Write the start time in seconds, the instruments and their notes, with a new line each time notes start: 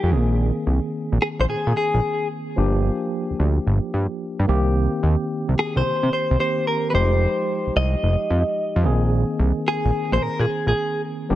Already playing: tine electric piano F3 G#3 D#4 G5
0.03 analog synth bass F2
0.11 analog synth bass A#1, tine electric piano D#3 A#3 C4 G#4
0.67 analog synth bass C2
1.12 analog synth bass A#1
1.22 clean electric guitar G#4
1.39 analog synth bass A#1, clean electric guitar C5
1.50 clean electric guitar G#4
1.67 analog synth bass A#2
1.77 clean electric guitar G#4
1.94 analog synth bass A#1
2.56 analog synth bass G1, tine electric piano F3 A#3 D4 G4
3.30 analog synth bass D2
3.39 analog synth bass D2
3.67 analog synth bass G1
3.94 analog synth bass G2
4.39 analog synth bass G2
4.47 analog synth bass C2, tine electric piano D#3 A#3 C4 G4
5.03 analog synth bass D#2
5.49 analog synth bass C2
5.59 clean electric guitar G#4
5.76 analog synth bass C2, clean electric guitar C5
6.03 analog synth bass C3
6.13 clean electric guitar C5
6.31 analog synth bass C2
6.39 tine electric piano D#3 A#3 C4 G4, clean electric guitar C5
6.67 clean electric guitar A#4
6.90 analog synth bass F1, tine electric piano F3 G#3 D#4, clean electric guitar B4
6.95 tine electric piano G4, clean electric guitar C5
7.67 analog synth bass C2
7.76 analog synth bass C2, clean electric guitar D#5
8.03 analog synth bass F1
8.30 analog synth bass F2
8.76 analog synth bass F2
8.83 analog synth bass A#1, tine electric piano D#3 A#3 C4 G#4
9.39 analog synth bass C2
9.68 clean electric guitar G#4
9.85 analog synth bass A#1
10.12 analog synth bass A#1, clean electric guitar C5
10.22 clean electric guitar A#4
10.39 analog synth bass A#2, clean electric guitar G#4
10.67 analog synth bass A#1, clean electric guitar G#4
11.29 analog synth bass G1, tine electric piano F3 A#3 D4 G4